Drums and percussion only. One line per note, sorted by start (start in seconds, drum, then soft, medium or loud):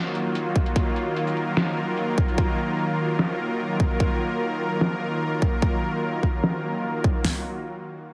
0.15 closed hi-hat soft
0.35 closed hi-hat medium
0.56 kick loud
0.66 closed hi-hat medium
0.76 kick loud
0.76 closed hi-hat medium
0.96 closed hi-hat soft
1.16 closed hi-hat medium
1.27 closed hi-hat soft
1.27 shaker medium
1.37 closed hi-hat medium
1.57 snare loud
1.57 closed hi-hat medium
1.77 closed hi-hat soft
1.98 closed hi-hat medium
2.18 kick loud
2.28 closed hi-hat medium
2.28 shaker medium
2.38 kick loud
2.38 closed hi-hat medium
2.58 closed hi-hat medium
2.79 closed hi-hat medium
2.89 closed hi-hat soft
2.99 closed hi-hat medium
3.19 snare loud
3.19 closed hi-hat medium
3.39 closed hi-hat medium
3.50 shaker medium
3.60 closed hi-hat medium
3.70 shaker medium
3.80 kick loud
3.90 closed hi-hat medium
3.90 shaker medium
4.00 kick loud
4.00 closed hi-hat medium
4.41 closed hi-hat medium
4.51 closed hi-hat soft
4.61 closed hi-hat medium
4.81 snare loud
5.01 closed hi-hat medium
5.22 closed hi-hat medium
5.42 kick medium
5.53 closed hi-hat medium
5.62 kick loud
5.62 closed hi-hat medium
5.83 closed hi-hat medium
6.03 closed hi-hat medium
6.23 kick medium
6.43 snare loud
6.43 closed hi-hat medium
6.64 closed hi-hat medium
6.84 closed hi-hat medium
7.04 kick loud
7.15 closed hi-hat medium
7.15 shaker medium
7.25 snare loud
7.25 floor tom loud
7.25 open hi-hat medium